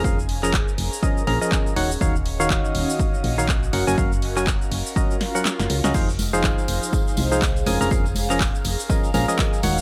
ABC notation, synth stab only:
X:1
M:4/4
L:1/16
Q:"Swing 16ths" 1/4=122
K:Bbm
V:1 name="Synth stab"
[F,DABf] z2 [F,DABb] z4 [F,DABe]2 [F,DABb] [F,DABe]3 [E,EGdg] z | [E,EGdf] z2 [E,EGdf]8 [E,EGdf] z2 [G,DGBg] [G,DGBa] | [G,DGBf] z2 [G,DGBa] z4 [G,DGBe]2 z [G,DGBg] z3 [DGBe] | [F,EAcf] z2 [F,EAcf]8 [F,EAcf] z2 [F,DABa] [F,DABb] |
[F,DABf] z2 [F,DABb] z4 [F,DABe]2 [F,DABb] [F,DABe]3 [E,EGdg] z |]